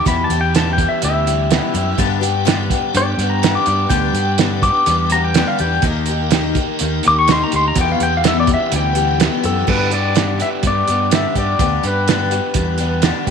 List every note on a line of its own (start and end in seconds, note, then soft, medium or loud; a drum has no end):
0.00 0.31 G4 medium
0.05 0.30 E2 medium
0.05 0.25 E2 loud
0.05 0.31 B2 medium
0.05 0.31 E3 medium
0.05 0.31 G3 medium
0.05 0.31 E4 medium
0.05 0.30 G4 medium
0.05 0.23 B5 medium
0.05 kick loud
0.05 closed hi-hat medium
0.24 0.39 A5 medium
0.30 0.85 E2 medium
0.30 0.54 E3 soft
0.30 0.55 G3 soft
0.30 0.55 E4 medium
0.30 0.55 G4 medium
0.30 closed hi-hat medium
0.41 0.56 G5 medium
0.55 0.79 E2 medium
0.55 0.79 B2 medium
0.55 0.80 E3 medium
0.55 0.80 G3 medium
0.55 1.51 B3 medium
0.55 0.78 E4 medium
0.55 0.78 G4 medium
0.55 0.71 A5 medium
0.55 snare loud
0.55 closed hi-hat medium
0.73 0.88 G5 medium
0.78 1.01 E3 soft
0.78 1.02 G3 soft
0.78 1.03 E4 soft
0.78 1.03 G4 medium
0.78 kick medium
0.78 closed hi-hat medium
0.89 1.03 E5 medium
1.02 1.58 D2 medium
1.02 1.27 E3 medium
1.02 1.28 G3 medium
1.02 1.27 E4 medium
1.02 1.26 G4 medium
1.02 1.97 E5 loud
1.02 closed hi-hat medium
1.27 1.50 E3 soft
1.27 1.51 G3 soft
1.27 1.51 E4 soft
1.27 1.51 G4 medium
1.27 closed hi-hat medium
1.51 1.75 E2 medium
1.51 1.76 B2 medium
1.51 1.75 E3 medium
1.51 1.75 G3 medium
1.51 2.47 B3 medium
1.51 1.74 E4 medium
1.51 1.73 G4 medium
1.51 snare loud
1.51 closed hi-hat medium
1.74 1.93 F#2 medium
1.74 1.98 E3 soft
1.74 1.98 G3 medium
1.74 1.99 E4 medium
1.74 1.98 G4 medium
1.74 closed hi-hat medium
1.94 2.23 G2 medium
1.94 5.78 D4 medium
1.94 5.77 B4 medium
1.94 9.62 G5 medium
1.98 2.72 G2 loud
1.98 2.23 D3 medium
1.98 2.22 G3 medium
1.98 2.21 B3 medium
1.98 2.20 D4 medium
1.98 2.20 G4 medium
1.98 kick loud
1.98 closed hi-hat medium
2.21 2.44 G3 soft
2.21 2.44 B3 soft
2.21 2.45 D4 medium
2.21 2.45 G4 medium
2.21 closed hi-hat medium
2.45 2.71 G2 medium
2.45 2.70 D3 medium
2.45 2.71 G3 medium
2.45 2.71 B3 medium
2.45 2.70 D4 loud
2.45 2.70 G4 medium
2.45 snare loud
2.45 closed hi-hat medium
2.70 2.93 G3 soft
2.70 2.94 B3 soft
2.70 2.95 D4 medium
2.70 2.95 G4 medium
2.70 kick medium
2.70 closed hi-hat medium
2.94 3.13 G2 medium
2.94 3.19 G3 medium
2.94 3.20 B3 medium
2.94 3.19 D4 medium
2.94 3.18 G4 medium
2.94 3.08 D5 loud
2.94 closed hi-hat medium
3.06 3.30 G5 medium
3.18 3.55 G2 medium
3.18 3.43 G3 soft
3.18 3.43 B3 soft
3.18 3.43 D4 soft
3.18 3.43 G4 soft
3.18 closed hi-hat medium
3.30 3.54 A#5 medium
3.43 3.67 G2 medium
3.43 3.68 D3 medium
3.43 3.68 G3 medium
3.43 3.67 B3 medium
3.43 3.67 D4 medium
3.43 3.66 G4 medium
3.43 snare loud
3.43 closed hi-hat medium
3.55 3.91 D6 medium
3.66 3.86 G2 medium
3.66 3.89 G3 soft
3.66 3.89 B3 medium
3.66 3.90 D4 medium
3.66 3.89 G4 medium
3.66 closed hi-hat medium
3.89 4.09 D2 loud
3.89 4.15 G2 medium
3.89 4.15 D3 medium
3.89 4.15 G3 medium
3.89 4.15 B3 medium
3.89 4.15 D4 medium
3.89 4.14 G4 medium
3.89 4.37 G5 loud
3.89 kick loud
3.89 closed hi-hat loud
4.13 4.69 G2 medium
4.13 4.39 D4 soft
4.13 4.40 G4 medium
4.13 closed hi-hat medium
4.17 4.39 G3 soft
4.17 4.39 B3 soft
4.38 4.64 G2 medium
4.38 4.64 D3 medium
4.38 4.64 G3 medium
4.38 4.64 B3 medium
4.38 4.63 D4 medium
4.38 4.62 G4 medium
4.38 snare loud
4.38 closed hi-hat medium
4.62 4.86 G3 soft
4.62 4.87 B3 soft
4.62 4.88 D4 soft
4.62 4.88 G4 medium
4.62 5.10 D6 loud
4.62 kick medium
4.62 closed hi-hat medium
4.86 5.42 E2 medium
4.86 5.12 G3 medium
4.86 5.12 B3 medium
4.86 5.11 D4 medium
4.86 5.10 G4 medium
4.86 closed hi-hat medium
5.10 5.36 B3 medium
5.10 5.36 D4 medium
5.10 5.36 G4 medium
5.10 5.24 A#5 medium
5.10 closed hi-hat medium
5.14 5.36 G3 soft
5.24 5.48 G5 medium
5.34 5.60 G2 medium
5.34 5.60 D3 medium
5.34 5.61 G3 medium
5.34 5.60 B3 loud
5.34 5.59 D4 medium
5.34 5.58 G4 loud
5.34 snare loud
5.34 closed hi-hat medium
5.48 5.60 F5 medium
5.59 5.78 E2 medium
5.59 5.83 G3 soft
5.59 5.84 B3 medium
5.59 5.84 D4 medium
5.59 5.84 G4 medium
5.59 5.84 G5 loud
5.59 closed hi-hat medium
5.82 6.56 D#2 loud
5.82 6.08 D#3 medium
5.82 6.08 A#3 medium
5.82 7.74 D#4 medium
5.82 6.09 D#4 medium
5.82 6.08 G4 medium
5.82 7.75 A#4 medium
5.82 kick loud
5.82 closed hi-hat medium
6.06 6.32 G4 medium
6.06 closed hi-hat medium
6.10 6.30 A#3 medium
6.10 6.31 D#4 soft
6.31 6.56 D#3 medium
6.31 6.56 A#3 medium
6.31 6.56 D#4 medium
6.31 6.55 G4 loud
6.31 snare loud
6.31 closed hi-hat medium
6.55 6.80 A#3 soft
6.55 6.80 D#4 soft
6.55 6.80 G4 medium
6.55 kick medium
6.55 closed hi-hat medium
6.79 6.99 D#2 medium
6.79 7.04 D#3 medium
6.79 7.05 A#3 medium
6.79 7.04 D#4 medium
6.79 7.03 G4 medium
6.79 closed hi-hat medium
7.03 7.42 D#2 medium
7.03 7.28 A#3 soft
7.03 7.28 D#4 medium
7.03 7.28 G4 medium
7.03 closed hi-hat medium
7.08 7.18 D6 medium
7.19 7.29 C#6 loud
7.28 7.52 D#3 medium
7.28 7.53 A#3 medium
7.28 7.52 D#4 medium
7.28 7.51 G4 medium
7.28 snare loud
7.28 closed hi-hat medium
7.32 7.42 C6 medium
7.44 7.54 A#5 medium
7.52 7.71 D2 medium
7.52 7.77 A#3 medium
7.52 7.77 D#4 medium
7.52 7.76 G4 medium
7.52 closed hi-hat medium
7.56 7.66 C6 medium
7.68 7.78 A#5 loud
7.74 7.94 E2 loud
7.74 8.01 E2 medium
7.74 8.01 B2 medium
7.74 8.01 G3 medium
7.74 9.65 E4 medium
7.74 9.66 B4 medium
7.74 kick loud
7.74 closed hi-hat loud
7.78 8.01 E3 medium
7.78 8.00 B3 medium
7.78 7.99 G4 medium
7.78 7.90 G5 loud
7.92 8.02 F5 medium
7.99 8.55 E2 medium
7.99 8.23 E3 soft
7.99 8.23 G3 medium
7.99 8.24 B3 medium
7.99 8.24 G4 medium
7.99 8.13 G5 loud
7.99 closed hi-hat medium
8.17 8.26 F5 medium
8.24 8.48 E2 medium
8.24 8.48 B2 medium
8.24 8.48 E3 medium
8.24 8.48 G3 medium
8.24 8.47 B3 medium
8.24 8.47 G4 medium
8.24 snare loud
8.24 closed hi-hat medium
8.28 8.38 E5 medium
8.40 8.50 D5 medium
8.47 8.71 E3 soft
8.47 8.72 G3 soft
8.47 8.72 B3 soft
8.47 8.72 G4 soft
8.47 kick loud
8.47 closed hi-hat medium
8.54 8.74 E5 medium
8.72 9.27 D2 medium
8.72 8.96 E3 medium
8.72 8.96 G3 medium
8.72 8.96 B3 medium
8.72 8.95 G4 medium
8.72 closed hi-hat medium
8.76 9.21 G5 loud
8.95 9.19 E3 soft
8.95 9.20 G3 soft
8.95 9.20 B3 medium
8.95 9.20 G4 medium
8.95 closed hi-hat medium
9.20 9.44 E2 medium
9.20 9.45 B2 medium
9.20 9.44 E3 medium
9.20 9.45 G3 medium
9.20 9.44 B3 medium
9.20 9.44 G4 medium
9.20 snare loud
9.20 closed hi-hat medium
9.44 9.62 F#2 medium
9.44 9.67 E3 medium
9.44 9.66 G3 medium
9.44 9.66 B3 medium
9.44 9.68 G4 medium
9.44 9.69 A4 medium
9.44 closed hi-hat medium
9.67 9.92 G2 medium
9.67 10.41 G2 loud
9.67 9.92 D3 medium
9.67 9.92 G3 medium
9.67 9.92 B3 medium
9.67 9.91 D4 medium
9.67 9.90 G4 medium
9.67 9.94 B4 medium
9.67 kick loud
9.67 crash loud
9.71 10.90 G2 medium
9.91 10.14 G3 soft
9.91 10.15 B3 soft
9.91 10.15 D4 soft
9.91 10.15 G4 soft
9.91 10.38 D5 loud
9.91 closed hi-hat medium
10.14 10.39 G2 medium
10.14 10.40 D3 medium
10.14 10.40 G3 medium
10.14 10.40 B3 medium
10.14 10.39 D4 medium
10.14 10.38 G4 medium
10.14 snare loud
10.14 closed hi-hat medium
10.39 10.61 G3 soft
10.39 10.63 B3 soft
10.39 10.64 D4 soft
10.39 10.64 G4 medium
10.39 10.48 E5 loud
10.39 closed hi-hat medium
10.63 10.82 G2 medium
10.63 10.87 G3 medium
10.63 10.88 B3 medium
10.63 10.87 D4 medium
10.63 10.86 G4 medium
10.63 kick medium
10.63 closed hi-hat medium
10.67 12.55 G3 medium
10.67 11.11 D5 loud
10.88 11.25 G2 medium
10.88 11.10 G3 soft
10.88 11.11 B3 soft
10.88 11.11 D4 soft
10.88 11.11 G4 soft
10.88 closed hi-hat medium
11.11 11.36 G2 medium
11.11 11.36 D3 medium
11.11 11.36 G3 medium
11.11 11.36 B3 medium
11.11 11.36 D4 medium
11.11 11.35 G4 medium
11.11 11.38 E5 medium
11.11 snare loud
11.11 closed hi-hat medium
11.35 11.54 G2 medium
11.35 11.59 G3 soft
11.35 11.59 B3 soft
11.35 11.59 D4 medium
11.35 11.60 G4 medium
11.35 11.87 D5 loud
11.35 kick medium
11.35 closed hi-hat medium
11.59 11.78 D2 loud
11.59 11.84 G2 medium
11.59 11.84 D3 medium
11.59 11.84 G3 medium
11.59 11.84 B3 medium
11.59 11.83 D4 medium
11.59 11.82 G4 medium
11.59 kick loud
11.59 closed hi-hat medium
11.83 12.39 G2 medium
11.83 12.07 G3 soft
11.83 12.07 B3 soft
11.83 12.08 D4 soft
11.83 12.08 G4 medium
11.83 closed hi-hat medium
11.87 12.10 B4 medium
12.08 12.32 G2 medium
12.08 12.32 D3 medium
12.08 12.32 G3 medium
12.08 12.32 B3 medium
12.08 12.32 D4 medium
12.08 12.30 G4 medium
12.08 13.02 B4 medium
12.08 snare loud
12.08 closed hi-hat medium
12.31 12.53 G3 soft
12.31 12.54 B3 medium
12.31 12.55 D4 soft
12.31 12.55 G4 medium
12.31 closed hi-hat medium
12.54 13.10 E2 medium
12.54 12.79 G3 medium
12.54 12.79 B3 medium
12.54 12.79 D4 medium
12.54 12.78 G4 medium
12.54 kick medium
12.54 closed hi-hat medium
12.78 13.01 G3 soft
12.78 13.01 B3 medium
12.78 13.02 D4 medium
12.78 13.02 G4 medium
12.78 closed hi-hat medium
13.02 13.27 G2 medium
13.02 13.27 D3 medium
13.02 13.27 G3 medium
13.02 13.27 B3 loud
13.02 13.26 D4 loud
13.02 13.26 G4 loud
13.02 snare loud
13.02 closed hi-hat medium
13.27 13.30 D2 medium
13.27 13.30 G4 medium
13.27 kick medium
13.27 closed hi-hat medium